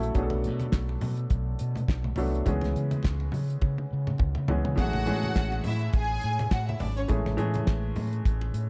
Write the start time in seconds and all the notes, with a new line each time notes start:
Already playing: F#3 A3 C#4 E4 A4
0.03 closed hi-hat
0.15 B1 F#3 A3 B3 D4 G#4, kick, closed hi-hat, muted conga, low conga
0.23 A4
0.30 B1, muted conga, high conga
0.44 B2, closed hi-hat
0.60 closed hi-hat, high conga
0.72 B1, kick, snare, clap, closed hi-hat
0.89 muted conga
1.01 B2, open hi-hat, low conga
1.17 closed hi-hat
1.30 B1, kick, closed hi-hat, muted conga
1.59 B2, closed hi-hat
1.76 closed hi-hat, high conga
1.88 B1, kick, snare, clap, closed hi-hat
2.04 high conga
2.16 C2 F#3 A3 B3 D4 A4, open hi-hat, high conga, low conga
2.35 closed hi-hat
2.45 C#2 E3 G#3 B3 C#4 G#4, kick, closed hi-hat, muted conga, low conga
2.61 C#2, snare, closed hi-hat, muted conga, high conga
2.76 C#3, closed hi-hat
2.91 closed hi-hat, high conga
3.03 C#2, kick, snare, clap, closed hi-hat, muted conga
3.20 muted conga
3.32 C#3, open hi-hat, low conga
3.50 closed hi-hat
3.62 C#3, kick, high tom, muted conga
3.78 high tom
3.93 C#3
4.07 mid tom, high conga
4.18 C#2, kick, mid tom, muted conga
4.35 C#3, high conga
4.48 C#2 E3 G#3 B3 C#4 G#4, floor tom, high conga, low conga
4.65 C#3, floor tom
4.76 A1 E3 G#3 A3 C#4 F#4 G#4 F#5, kick, closed hi-hat, muted conga, low conga
4.93 A1, closed hi-hat, muted conga, high conga
5.06 A2 E3 G#3 A3 C#4 G#4, closed hi-hat
5.23 closed hi-hat, high conga
5.36 A1, kick, snare, clap, closed hi-hat
5.52 muted conga
5.64 A2 E4 E5, open hi-hat, low conga
5.81 closed hi-hat
5.93 A1 G#4 G#5, kick, closed hi-hat
6.21 A2, closed hi-hat
6.39 closed hi-hat, high conga
6.51 A2 F#4 F#5, kick, snare, clap, closed hi-hat
6.69 E4 E5, muted conga, high conga
6.80 G#1 D4 D5, open hi-hat, high conga, low conga
6.96 C#4 C#5, closed hi-hat
7.08 A1 E3 G#3 A3 C#4 G#4, kick, closed hi-hat, low conga
7.26 A1, snare, high conga
7.37 A2 E3 G#3 A3 C#4 G#4, closed hi-hat
7.54 closed hi-hat, high conga
7.67 A1, kick, snare, clap, closed hi-hat, muted conga
7.96 A2, open hi-hat, low conga
8.13 closed hi-hat
8.25 A1, kick, closed hi-hat, muted conga
8.41 muted conga
8.54 A2, closed hi-hat